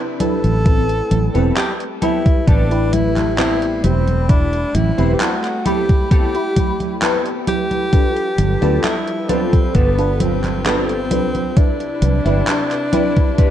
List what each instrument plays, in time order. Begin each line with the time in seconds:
Already playing: string section C3 D4 E4 B4, clean electric guitar C4 D4 E4 B4
0.19 fm electric piano D4 E4 G4 B4, tenor saxophone A4, closed hi-hat, high conga
0.44 fingered electric bass A1, closed hi-hat, high conga
0.65 string section G3 A3, fm electric piano C4 E4 G4 B4, muted clean electric guitar stroke, kick, closed hi-hat, high conga
0.89 muted clean electric guitar stroke, closed hi-hat
1.11 fingered electric bass A1, closed hi-hat, high conga
1.34 fingered electric bass E1, clean electric guitar B3 C4 G4 A4, fm electric piano C4 E4 G4 B4, closed hi-hat, high conga
1.57 tenor saxophone G4, clap, closed hi-hat, high conga
1.80 closed hi-hat
2.02 clean electric guitar B3 C4 G4 A4, fm electric piano E4 G4 B4, tenor saxophone E4, closed hi-hat, high conga
2.26 kick, closed hi-hat, high conga
2.47 fingered electric bass A1, clean electric guitar B3 C4 G4 A4, tenor saxophone D4, kick, closed hi-hat, high conga
2.71 fm electric piano E4 G4 B4, closed hi-hat
2.92 tenor saxophone E4, muted clean electric guitar stroke, closed hi-hat, high conga
3.17 clap, closed hi-hat, high conga
3.37 clean electric guitar B3 C4 G4 C5, fm electric piano C4 E4 G4 B4, tenor saxophone E4, clap, closed hi-hat, high conga
3.62 closed hi-hat
3.83 fingered electric bass E1, tenor saxophone C4, fm electric piano E4 G4 B5, closed hi-hat, high conga
4.07 closed hi-hat, high conga
4.29 tenor saxophone D4, fm electric piano E4 G4 B5, muted clean electric guitar stroke, kick, closed hi-hat, high conga
4.53 muted clean electric guitar stroke, closed hi-hat
4.75 fingered electric bass A1, tenor saxophone E4, closed hi-hat, high conga
4.98 fingered electric bass E1, clean electric guitar B3 C4 G4 C5, fm electric piano C4 E4 G4 B4, closed hi-hat, high conga
5.14 tenor saxophone G4
5.20 tenor saxophone F#4, clap, closed hi-hat, high conga
5.44 clap, closed hi-hat
5.65 clean electric guitar B3 C4 G4 A4, fm electric piano E4 G4 B5, tenor saxophone G4, closed hi-hat, high conga
5.89 kick, closed hi-hat, high conga
6.11 clean electric guitar B3 C4 G4 A4, tenor saxophone G4, kick, closed hi-hat, high conga
6.35 fm electric piano E4 G4 B5, closed hi-hat
6.56 muted clean electric guitar stroke, kick, closed hi-hat, high conga
6.80 closed hi-hat, high conga
7.01 clean electric guitar B3 C4 G4 A4, fm electric piano C4 E4 G4 B4, clap, closed hi-hat, high conga
7.26 closed hi-hat
7.47 fm electric piano E4 G4 B4, tenor saxophone G4, closed hi-hat, high conga
7.71 closed hi-hat, high conga
7.92 string section F3 G3 A4 B4, fm electric piano D4 F4 A4 B4, muted clean electric guitar stroke, kick, closed hi-hat, high conga
8.16 muted clean electric guitar stroke, closed hi-hat
8.38 fingered electric bass G1, closed hi-hat, high conga
8.61 fingered electric bass D2, clean electric guitar B3 F4 G4 A4, fm electric piano D4 F4 A4 B4, closed hi-hat, high conga
8.84 tenor saxophone E4, clap, closed hi-hat, high conga
9.07 closed hi-hat
9.28 clean electric guitar B3 F4 G4 A4, tenor saxophone C4, fm electric piano D4 F4 A4 B4, closed hi-hat, high conga
9.53 kick, closed hi-hat, high conga
9.74 fingered electric bass G1, clean electric guitar B3 F4 G4 A4, tenor saxophone B3, string section G4, kick, closed hi-hat, high conga
9.98 fm electric piano D4 F4 A4 B4, closed hi-hat
10.20 tenor saxophone C4, muted clean electric guitar stroke, closed hi-hat, high conga
10.44 clap, closed hi-hat, high conga
10.65 clean electric guitar B3 F4 G4 A4, tenor saxophone C4, fm electric piano D4 F4 A4 B4, clap, closed hi-hat, high conga
10.89 closed hi-hat
11.10 fingered electric bass C2, fm electric piano D4 F4 A4 B4, closed hi-hat, high conga
11.35 closed hi-hat, high conga
11.56 string section C3 D4 E4 B4, fm electric piano D4 E4 G4 B4, tenor saxophone D4, muted clean electric guitar stroke, kick, closed hi-hat, high conga
11.80 muted clean electric guitar stroke, closed hi-hat
12.02 fingered electric bass C2, closed hi-hat, high conga
12.25 fingered electric bass G1, clean electric guitar C4 D4 E4 B4, fm electric piano D4 E4 G4 B4, closed hi-hat, high conga
12.47 clap, closed hi-hat, high conga
12.71 clap, closed hi-hat
12.92 clean electric guitar C4 D4 E4 B4, fm electric piano D4 E4 G4 B4, closed hi-hat, high conga
13.16 kick, closed hi-hat, high conga
13.38 clean electric guitar C4 D4 E4 B4, kick, closed hi-hat, high conga